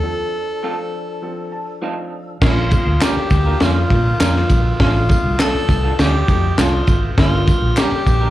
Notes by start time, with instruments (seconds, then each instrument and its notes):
Already playing: tonewheel organ F3 D4 A4, tenor saxophone A4
0.03 upright piano F3 C4 A4
0.63 upright piano F3 C4 A4, clean electric guitar A3 C4 F4 A4
1.22 upright piano F3 C4 A4
1.52 upright piano A5
1.81 upright piano F3 C4 D#4 F5, clean electric guitar A3 C4 F4 A4
2.41 fingered electric bass A#1, tonewheel organ D3 A#3 F4, upright piano F3 A#3 D4 A#4, tenor saxophone F4, glockenspiel F6, kick, snare, crash, tambourine
2.71 kick, ride, tambourine
2.87 fingered electric bass D2
3.01 upright piano F3 A#3 D4 A#4, clean electric guitar A#3 D4 F4 A#4, tenor saxophone G4, glockenspiel G6, snare, clap, ride, tambourine
3.17 muted fingered electric bass stroke
3.30 fingered electric bass D2, kick, ride, tambourine
3.46 clean electric guitar A#3 D4 F4 A#4
3.60 fingered electric bass F2, upright piano F3 A#3 D4 A#4, tenor saxophone F4, glockenspiel F6, snare, ride, tambourine
3.90 fingered electric bass A#2, upright piano F3 A#3 D4 A#4, kick, ride
4.20 fingered electric bass F2, upright piano F3 A#3 D4 A#4, clean electric guitar A#3 D4 F4 A#4, snare, clap, ride, tambourine
4.35 snare
4.49 fingered electric bass A#1, kick, ride, tambourine
4.79 fingered electric bass A1, upright piano F3 A3 D4 A4, tonewheel organ A3, tenor saxophone F4, glockenspiel F6, kick, snare, ride
5.09 kick, ride, tambourine
5.24 fingered electric bass C2
5.38 upright piano F3 A3 D4 A4, clean electric guitar A3 D4 F4 A4, tenor saxophone A4, glockenspiel A6, snare, clap, ride, tambourine
5.55 muted fingered electric bass stroke
5.69 fingered electric bass C2, kick, ride, tambourine
5.84 clean electric guitar A3 D4 F4 A4
5.99 fingered electric bass D2, upright piano F3 A3 D4 F4, tenor saxophone G4, glockenspiel G6, snare, ride, tambourine
6.28 fingered electric bass F2, upright piano F3 A3 D4 A4, kick, ride, tambourine
6.58 fingered electric bass C2, upright piano F3 A3 D4 A4, clean electric guitar A3 D4 F4 A4, tenor saxophone F4, glockenspiel F6, snare, clap, ride, tambourine
6.87 fingered electric bass G#1, kick, ride, tambourine
7.17 fingered electric bass G1, upright piano G3 A#3 D4 A#4, tonewheel organ A#3 G4, tenor saxophone F4, glockenspiel F6, kick, snare, ride, tambourine
7.47 kick, ride, tambourine
7.62 fingered electric bass A#1
7.76 upright piano G3 A#3 D4 G4, clean electric guitar A#3 D4 G4 A#4, tenor saxophone G4, glockenspiel G6, snare, clap, ride, tambourine
7.92 muted fingered electric bass stroke
8.06 fingered electric bass A#1, kick, ride, tambourine
8.21 clean electric guitar A#3 D4 G4 A#4